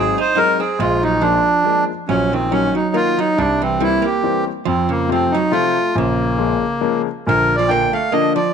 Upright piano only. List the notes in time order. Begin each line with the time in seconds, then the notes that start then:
Already playing: F#3 G#3 C4 D#4
0.36 F#3 G#3 C4 D#4
1.22 F3 G#3 A#3 D4
1.64 F3 G#3 A#3 D4
2.51 D#3 F#3 A#3 D#4
2.93 D#3 F#3 A#3 D#4
3.81 E3 G3 A#3 C4
4.24 E3 G3 A#3 C4
5.09 C3 F3 A3 C4
5.51 C3 F3 A3 C4
6.38 C#3 F3 G#3 A#3
6.81 C#3 F3 G#3 A#3
7.69 D3 F3 A#3 D4
8.13 D3 F3 A#3 D4